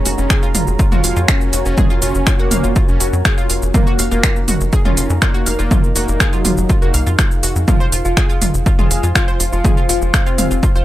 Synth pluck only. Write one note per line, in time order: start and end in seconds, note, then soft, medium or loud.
0.06 0.10 F#4 medium
0.06 0.10 F#5 medium
0.30 0.38 G#4 loud
0.30 0.38 G#5 medium
0.43 0.53 F4 loud
0.43 0.53 F5 medium
0.55 0.67 F4 medium
0.55 0.67 F5 medium
0.79 0.87 F4 medium
0.79 0.87 F5 medium
0.92 1.00 F#4 medium
0.92 1.00 F#5 medium
1.04 1.09 F5 medium
1.04 1.09 F6 medium
1.16 1.27 F4 medium
1.16 1.27 F5 medium
1.28 1.40 F4 medium
1.28 1.40 F5 medium
1.53 1.58 F#4 medium
1.53 1.58 F#5 medium
1.78 1.86 G#4 loud
1.78 1.86 G#5 medium
1.90 2.01 F4 loud
1.90 2.01 F5 medium
2.02 2.14 F4 medium
2.02 2.14 F5 medium
2.27 2.35 F4 medium
2.27 2.35 F5 medium
2.39 2.47 F#4 loud
2.39 2.47 F#5 medium
2.51 2.56 F5 medium
2.51 2.56 F6 medium
2.64 2.75 F4 medium
2.64 2.75 F5 medium
2.76 2.88 F4 medium
2.76 2.88 F5 medium
3.01 3.05 F#4 medium
3.01 3.05 F#5 medium
3.25 3.33 G#4 loud
3.25 3.33 G#5 medium
3.38 3.48 F4 loud
3.38 3.48 F5 medium
3.50 3.62 F4 medium
3.50 3.62 F5 medium
3.74 3.82 F4 medium
3.74 3.82 F5 medium
3.87 3.95 F#4 loud
3.87 3.95 F#5 medium
3.99 4.04 F5 medium
3.99 4.04 F6 medium
4.11 4.22 F4 medium
4.11 4.22 F5 medium
4.23 4.35 F4 medium
4.23 4.35 F5 medium
4.48 4.53 F#4 medium
4.48 4.53 F#5 medium
4.73 4.81 G#4 loud
4.73 4.81 G#5 medium
4.85 4.96 F4 loud
4.85 4.96 F5 medium
4.97 5.09 F4 medium
4.97 5.09 F5 medium
5.22 5.30 F4 medium
5.22 5.30 F5 medium
5.34 5.42 F#4 loud
5.34 5.42 F#5 medium
5.46 5.51 F5 medium
5.46 5.51 F6 medium
5.59 5.70 F4 medium
5.59 5.70 F5 medium
5.71 5.83 F4 medium
5.71 5.83 F5 medium
5.96 6.00 F#4 medium
5.96 6.00 F#5 medium
6.20 6.28 G#4 loud
6.20 6.28 G#5 medium
6.33 6.44 F4 medium
6.33 6.44 F5 medium
6.45 6.57 F4 medium
6.45 6.57 F5 medium
6.69 6.78 F4 medium
6.69 6.78 F5 medium
6.82 6.90 F#4 loud
6.82 6.90 F#5 medium
6.94 6.99 F5 medium
6.94 6.99 F6 medium
7.07 7.17 F4 medium
7.07 7.17 F5 medium
7.19 7.31 F4 medium
7.19 7.31 F5 medium
7.43 7.48 F#4 medium
7.43 7.48 F#5 medium
7.68 7.80 F4 medium
7.68 7.80 F5 medium
7.80 7.85 C5 loud
7.80 7.85 C6 medium
7.92 7.97 F4 medium
7.92 7.97 F5 medium
8.17 8.25 G#4 loud
8.17 8.25 G#5 medium
8.29 8.40 F4 loud
8.29 8.40 F5 medium
8.42 8.54 F4 medium
8.42 8.54 F5 medium
8.66 8.74 F4 medium
8.66 8.74 F5 medium
8.79 8.87 F4 loud
8.79 8.86 F5 medium
8.91 8.96 F5 medium
8.91 8.96 F6 medium
9.03 9.14 F4 medium
9.03 9.14 F5 medium
9.15 9.27 F4 medium
9.15 9.27 F5 medium
9.28 9.33 C5 loud
9.28 9.33 C6 medium
9.40 9.45 F4 medium
9.40 9.45 F5 medium
9.65 9.73 G#4 loud
9.65 9.73 G#5 medium
9.77 9.88 F4 loud
9.77 9.88 F5 medium
9.89 10.01 F4 medium
9.89 10.01 F5 medium
10.14 10.22 F4 medium
10.14 10.22 F5 medium
10.26 10.34 F4 medium
10.26 10.34 F5 medium
10.38 10.43 F5 medium
10.38 10.43 F6 medium
10.51 10.62 F4 medium
10.51 10.62 F5 soft
10.63 10.75 F4 medium
10.63 10.75 F5 medium
10.76 10.80 C5 loud
10.76 10.80 C6 medium